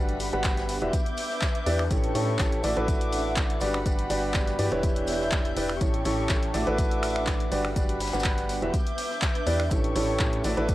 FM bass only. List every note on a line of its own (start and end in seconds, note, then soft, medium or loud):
0.00 0.30 G1 loud
0.33 0.79 G1 loud
0.82 0.90 E1 medium
1.66 1.88 E2 loud
1.91 2.13 A1 loud
2.15 2.37 A2 loud
2.39 2.62 A1 medium
2.64 2.74 A1 loud
2.77 3.59 A1 loud
3.61 3.84 G1 medium
3.86 4.08 G1 loud
4.10 4.32 G1 loud
4.35 4.57 G1 medium
4.59 4.69 G2 loud
4.72 5.54 E1 medium
5.57 5.79 E1 loud
5.81 6.03 A1 loud
6.05 6.27 A1 loud
6.30 6.52 A1 medium
6.54 6.64 A1 loud
6.67 7.49 A1 loud
7.52 7.74 G1 medium
7.76 8.11 G1 loud
8.13 8.60 G1 medium
8.62 8.70 E1 medium
9.47 9.69 E2 loud
9.71 9.93 A1 medium
9.96 10.18 A1 loud
10.20 10.42 A2 loud
10.44 10.55 A1 medium
10.57 10.75 A1 medium